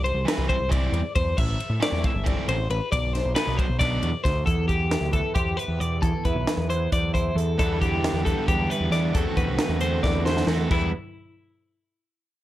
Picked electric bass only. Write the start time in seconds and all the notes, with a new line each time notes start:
Already playing: C2
0.14 C2
0.38 C2
0.59 C2
0.92 E2
1.16 E2
1.38 A1
1.70 A2
1.92 E2
2.15 G1
2.48 A1
2.70 A1
2.93 B1
3.25 B1
3.47 B1
3.69 B1
4.03 E2
4.25 D2
4.47 E2
5.01 D2
5.36 E2
5.68 E2
5.80 E2
6.03 E2
6.25 E2
6.35 B1
6.57 E2
6.92 E2
7.35 E2
7.60 E2
8.13 E2
8.48 E2
8.80 E2
8.91 E2
9.15 E2
9.37 E2
9.47 C2
9.69 E2
10.03 E2
10.47 E2
10.71 E2